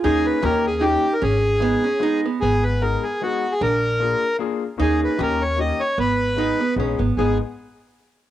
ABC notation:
X:1
M:3/4
L:1/16
Q:"Swing" 1/4=152
K:G#m
V:1 name="Accordion"
G2 B2 A2 G2 =G3 A | G8- G2 z2 | G2 B2 A2 G2 F3 G | A8 z4 |
G2 B2 A2 c2 d2 c2 | B8 z4 | G2 z8 z2 |]
V:2 name="Upright piano"
[A,CDG]4 [A,CD=G]2 z2 [A,CDG]2 z2 | z4 [G,B,DG]2 z2 [G,B,DG]2 z2 | z4 [G,B,DG]2 z2 [G,B,DG]2 z2 | z4 [A,=D^EG]2 z2 [A,DEG]2 z2 |
[A,CDG]4 [A,CD=G]2 z2 [A,CDG]2 z2 | z4 [G,B,DG]2 z2 [G,B,DG]2 z2 | [G,B,DG]2 z8 z2 |]
V:3 name="Hollow-body jazz guitar"
D4 C4 D4 | C4 B,2 C2 D2 B,2 | B,12 | =D12 |
D4 C8 | B,4 D2 B,2 C2 B,2 | B,2 z8 z2 |]
V:4 name="Upright bass" clef=bass
D,,4 D,,8 | G,,,8 z4 | G,,,8 z4 | A,,,8 z4 |
D,,4 D,,8 | G,,,8 A,,,2 G,,,2 | G,,,2 z8 z2 |]